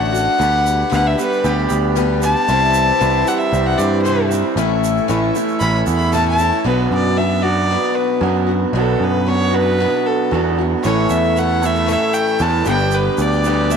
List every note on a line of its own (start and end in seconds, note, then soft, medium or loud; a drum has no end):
0.00 0.27 A1 medium
0.00 0.14 D3 medium
0.00 0.40 D3 medium
0.00 0.14 A3 medium
0.00 0.12 D4 medium
0.00 0.14 D4 medium
0.00 0.11 F#4 medium
0.00 0.38 F#4 medium
0.00 2.44 D5 medium
0.00 0.90 F#5 loud
0.00 0.37 A5 medium
0.12 0.38 A3 soft
0.12 0.39 D4 medium
0.12 0.39 F#4 medium
0.12 shaker medium
0.38 0.82 D2 medium
0.38 0.88 D3 medium
0.38 0.90 G3 medium
0.38 0.90 B3 medium
0.38 4.52 G4 medium
0.38 0.92 G4 medium
0.38 2.46 B5 medium
0.38 shaker medium
0.66 shaker medium
0.90 1.14 D2 loud
0.90 1.17 D3 medium
0.90 1.18 G3 medium
0.90 1.16 B3 medium
0.90 1.14 G4 medium
0.90 1.08 F#5 medium
0.90 shaker medium
1.07 1.18 E5 medium
1.15 1.43 G3 soft
1.15 1.43 B3 soft
1.15 1.43 G4 soft
1.15 shaker medium
1.20 1.48 B4 loud
1.32 shaker soft
1.42 1.66 D2 medium
1.42 1.94 D3 medium
1.42 1.95 G3 medium
1.42 1.95 B3 medium
1.42 1.96 G4 medium
1.42 shaker medium
1.46 1.71 G4 loud
1.70 2.34 D2 medium
1.70 2.49 D3 medium
1.70 shaker medium
1.95 2.22 D3 medium
1.95 2.22 G3 medium
1.95 2.20 B3 medium
1.95 2.19 G4 medium
1.95 shaker medium
2.20 2.49 G3 soft
2.20 2.48 B3 medium
2.20 2.47 G4 medium
2.20 3.29 A5 loud
2.20 shaker medium
2.47 2.91 C2 medium
2.47 2.97 C3 medium
2.47 2.99 E3 medium
2.47 2.99 G3 medium
2.47 2.99 C4 medium
2.47 3.00 E4 medium
2.47 4.54 E5 medium
2.47 4.55 C6 medium
2.47 shaker medium
2.74 shaker medium
2.99 3.22 C2 loud
2.99 3.26 C3 medium
2.99 3.26 E3 medium
2.99 3.27 G3 medium
2.99 3.25 C4 loud
2.99 3.24 E4 medium
2.99 shaker medium
3.25 3.52 G3 soft
3.25 3.53 C4 soft
3.25 3.52 E4 medium
3.25 3.39 F#5 medium
3.25 shaker loud
3.38 3.68 E5 medium
3.38 shaker soft
3.51 3.74 C2 loud
3.51 4.04 E3 soft
3.51 4.04 G3 medium
3.51 4.05 C4 medium
3.51 4.06 E4 medium
3.51 shaker medium
3.66 3.79 F#5 loud
3.78 4.42 G2 medium
3.78 4.57 E3 medium
3.78 4.01 D5 medium
3.78 shaker medium
4.02 4.31 C3 medium
4.02 4.31 E3 medium
4.02 4.31 G3 medium
4.02 4.28 C5 loud
4.06 4.31 C4 medium
4.06 4.29 E4 medium
4.06 shaker medium
4.31 4.57 G3 medium
4.31 4.58 C4 soft
4.31 4.57 E4 medium
4.31 shaker medium
4.56 4.98 A1 medium
4.56 5.07 A2 loud
4.56 5.08 E3 loud
4.56 5.08 A3 loud
4.56 5.09 C#4 loud
4.56 5.09 E4 loud
4.56 6.63 A4 medium
4.56 6.63 E5 medium
4.56 6.63 C#6 medium
4.56 shaker medium
4.84 shaker medium
4.97 shaker soft
5.08 5.30 A1 medium
5.08 5.35 A2 loud
5.08 5.35 E3 medium
5.08 5.35 A3 medium
5.08 5.35 C#4 medium
5.08 5.34 E4 medium
5.08 shaker medium
5.35 5.60 A3 soft
5.35 5.61 C#4 medium
5.35 5.61 E4 medium
5.35 shaker medium
5.48 shaker soft
5.59 5.82 A1 medium
5.59 6.12 E3 medium
5.59 6.13 A3 medium
5.59 6.13 C#4 medium
5.59 6.13 E4 medium
5.59 5.77 B5 medium
5.59 shaker medium
5.86 6.50 E2 medium
5.86 6.66 E3 medium
5.86 shaker medium
5.96 6.13 B5 medium
6.01 shaker soft
6.12 6.39 A2 medium
6.12 6.39 E3 medium
6.12 6.40 A3 medium
6.12 6.39 C#4 medium
6.12 6.38 E4 loud
6.12 6.27 A5 loud
6.12 shaker medium
6.28 6.63 A5 loud
6.38 6.65 A3 soft
6.38 6.66 C#4 medium
6.38 6.65 E4 medium
6.38 shaker medium
6.52 shaker soft
6.64 6.86 B1 medium
6.64 7.17 B2 medium
6.64 7.15 F#3 medium
6.64 7.17 B3 medium
6.64 7.18 D4 medium
6.64 7.18 F#4 medium
6.64 6.91 B4 medium
6.91 7.76 F#2 medium
6.91 7.19 D5 medium
7.16 7.43 F#3 medium
7.16 7.44 B3 medium
7.16 7.43 D4 medium
7.16 7.42 F#4 medium
7.16 7.44 E5 medium
7.43 8.20 B2 medium
7.43 8.20 F#3 medium
7.43 7.70 D4 soft
7.43 7.70 F#4 medium
7.43 7.96 D5 loud
7.47 7.70 B3 soft
7.70 8.22 B2 medium
7.70 8.20 F#3 medium
7.70 8.22 B3 medium
7.70 8.22 D4 medium
7.70 8.23 F#4 medium
7.95 8.48 B4 medium
8.21 8.64 F#2 medium
8.21 8.72 B2 medium
8.21 8.48 F#3 medium
8.21 8.49 B3 medium
8.21 8.48 D4 medium
8.25 8.45 F#4 medium
8.47 8.74 D4 soft
8.47 8.74 F#4 medium
8.51 8.74 B3 soft
8.73 8.95 B1 medium
8.73 9.26 B2 medium
8.73 9.25 F#3 medium
8.73 9.26 B3 medium
8.73 9.27 D4 medium
8.73 9.27 F#4 medium
8.77 9.05 A4 medium
9.00 9.85 F#2 medium
9.00 9.30 B4 medium
9.26 9.53 F#3 medium
9.26 9.53 B3 medium
9.26 9.51 D4 medium
9.26 9.50 F#4 medium
9.26 9.56 C#5 loud
9.51 9.79 B3 soft
9.51 9.79 D4 soft
9.51 9.78 F#4 soft
9.51 10.07 B4 loud
9.56 10.30 B2 medium
9.56 10.30 F#3 medium
9.80 10.32 B2 medium
9.80 10.30 F#3 medium
9.80 10.32 B3 medium
9.80 10.33 D4 medium
9.80 10.33 F#4 medium
10.06 10.58 A4 medium
10.31 10.74 E2 loud
10.31 10.82 B2 medium
10.31 10.57 F#3 medium
10.31 10.58 B3 medium
10.31 10.59 D4 medium
10.31 10.57 F#4 medium
10.58 10.85 B3 soft
10.58 10.85 D4 soft
10.58 10.84 F#4 medium
10.82 11.06 A1 medium
10.82 11.36 A2 medium
10.82 11.35 E3 medium
10.82 11.35 A3 medium
10.82 12.64 A4 medium
10.82 11.12 C#5 medium
10.82 12.64 E5 medium
10.82 12.65 C#6 medium
10.82 shaker medium
10.87 11.36 C#4 medium
10.87 11.38 A4 medium
11.09 11.94 E2 medium
11.09 11.40 E5 medium
11.09 shaker medium
11.24 shaker soft
11.36 11.62 E3 medium
11.36 11.62 A3 medium
11.36 11.62 C#4 medium
11.36 11.60 A4 medium
11.36 11.67 F#5 medium
11.36 shaker medium
11.61 12.39 A2 medium
11.61 12.40 E3 medium
11.61 11.87 A3 soft
11.61 11.87 C#4 soft
11.61 11.88 A4 soft
11.61 shaker medium
11.66 11.90 E5 loud
11.76 shaker soft
11.86 12.39 A2 medium
11.86 12.38 E3 medium
11.86 12.39 A3 medium
11.86 12.40 C#4 medium
11.86 12.41 A4 medium
11.86 shaker medium
11.90 12.15 E5 loud
12.13 12.43 G5 medium
12.13 shaker medium
12.28 shaker soft
12.39 12.61 E2 loud
12.39 12.65 A2 medium
12.39 12.66 E3 medium
12.39 12.67 A3 medium
12.39 12.65 C#4 medium
12.39 12.65 A4 medium
12.39 12.67 A5 loud
12.39 shaker medium
12.62 13.08 G1 loud
12.62 13.44 D4 medium
12.62 13.44 G4 medium
12.62 13.77 B4 medium
12.62 13.77 G5 medium
12.62 13.77 D6 medium
12.62 shaker medium
12.67 13.45 G2 medium
12.67 13.45 D3 medium
12.67 13.43 G3 medium
12.67 13.44 B3 medium
12.67 13.45 D4 medium
12.67 13.45 G4 medium
12.67 12.96 G5 loud
12.78 shaker soft
12.91 13.23 B4 medium
12.91 shaker medium
13.18 13.77 D2 medium
13.18 13.72 D5 medium
13.18 shaker medium
13.32 shaker soft
13.44 13.77 G2 medium
13.44 13.77 D3 medium
13.44 13.70 G3 medium
13.44 13.71 B3 medium
13.44 13.71 D4 medium
13.44 13.69 G4 medium
13.44 shaker medium
13.70 13.77 B3 soft
13.70 13.77 D4 soft
13.70 13.77 G4 soft
13.70 13.77 E5 loud
13.70 shaker loud